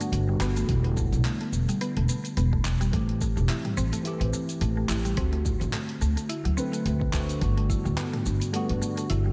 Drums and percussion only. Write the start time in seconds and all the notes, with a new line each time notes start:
0.01 closed hi-hat, shaker
0.13 closed hi-hat, shaker
0.41 clap, shaker
0.56 closed hi-hat, shaker
0.69 kick, closed hi-hat, shaker
0.84 closed hi-hat
0.97 kick, mid tom, shaker
1.13 closed hi-hat, mid tom, shaker
1.25 clap, closed hi-hat, shaker
1.41 closed hi-hat
1.53 shaker
1.69 closed hi-hat, shaker
1.81 closed hi-hat, shaker
1.97 closed hi-hat
2.09 shaker
2.25 closed hi-hat, shaker
2.37 closed hi-hat, shaker
2.53 kick
2.65 kick, clap, shaker
2.81 closed hi-hat, shaker
2.93 kick, closed hi-hat, shaker
3.09 closed hi-hat
3.21 kick, shaker
3.37 mid tom, shaker
3.49 clap, closed hi-hat, shaker
3.65 closed hi-hat, mid tom
3.78 shaker
3.93 closed hi-hat, shaker
4.05 closed hi-hat, shaker
4.21 closed hi-hat
4.34 shaker
4.49 closed hi-hat, shaker
4.61 closed hi-hat, shaker
4.89 clap, shaker
5.05 closed hi-hat, shaker
5.17 kick, closed hi-hat, shaker
5.33 closed hi-hat
5.45 kick, mid tom, shaker
5.61 closed hi-hat, mid tom, shaker
5.73 clap, closed hi-hat, shaker
5.89 closed hi-hat
6.02 shaker
6.17 closed hi-hat, shaker
6.30 closed hi-hat, shaker
6.45 closed hi-hat
6.58 shaker
6.73 closed hi-hat, shaker
6.86 closed hi-hat, shaker
7.01 kick
7.13 kick, clap, shaker
7.29 closed hi-hat, shaker
7.41 kick, closed hi-hat, shaker
7.58 closed hi-hat
7.70 kick, shaker
7.86 mid tom, shaker
7.98 clap, closed hi-hat, shaker
8.14 closed hi-hat, mid tom
8.26 shaker
8.42 closed hi-hat, shaker
8.54 closed hi-hat, shaker
8.69 closed hi-hat
8.82 shaker
8.97 closed hi-hat, shaker
9.10 closed hi-hat, shaker